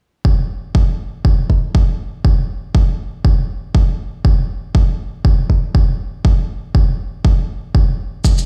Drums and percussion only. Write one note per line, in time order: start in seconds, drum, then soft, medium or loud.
0.25 kick loud
0.75 kick loud
1.25 kick loud
1.50 kick medium
1.75 kick loud
2.25 kick loud
2.75 kick loud
3.25 kick loud
3.75 kick loud
4.25 kick loud
4.75 kick loud
5.25 kick loud
5.50 kick medium
5.75 kick loud
6.25 kick loud
6.75 kick loud
7.25 kick loud
7.75 kick loud
8.25 kick loud
8.25 shaker medium
8.38 shaker soft